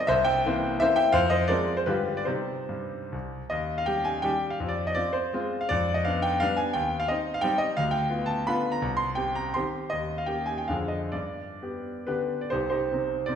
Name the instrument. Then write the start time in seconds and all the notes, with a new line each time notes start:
grand piano
0.07 C2 C5 E5
0.24 E5 G5
0.46 E3 A#3 C4
0.80 E3 A#3 C4 C5 E5
0.96 E5 G5
1.12 F2 C5 F5
1.30 C5 D#5
1.48 F3 G#3 C4 A#4 D5
1.77 C5
1.86 G2 D3 G3 F4 G4 B4
2.17 D5
2.25 C3 G3 D#4 G4 C5
2.69 G2
3.12 C2
3.50 D#2 D#5
3.78 F5
3.86 G3 G4 G5
4.04 G#5
4.22 D#3 G3 G4 G5
4.50 F5
4.60 F2
4.69 D5
4.87 D#5
4.95 C4 F4 D5
5.13 C5
5.33 G#3 C4 F4
5.61 F5
5.69 F2 D5
5.94 D#5
6.05 B3 D4 F5
6.22 G5
6.40 G3 B3 D4 F5
6.57 G#5
6.73 D#2 G5
7.00 F5
7.08 C4 D#4 D#5
7.34 F5
7.41 G3 C4 D#4 G5
7.58 D#5
7.77 D2 F5
7.91 G5
8.10 B3 F4
8.26 A5
8.47 D3 B3 F4 B5
8.72 A#5
8.82 C2
8.97 C6
9.15 C4 G4 G5
9.35 A#5
9.54 D#3 C4 G4 C6
9.90 D#2 D#5
10.18 F5
10.26 A#3 G4 G5
10.46 G#5
10.58 G5
10.68 F2 D3 D4 G#4 F5
10.88 D#5
11.12 G2 D5
11.62 B3 G4
12.07 D3 B3 D4 G4 B4
12.41 D5
12.50 C2 D#4 G4 C5
12.70 D#4 G4 C5
12.92 C3 C4 D#4
13.26 C3 C4 D#4 D5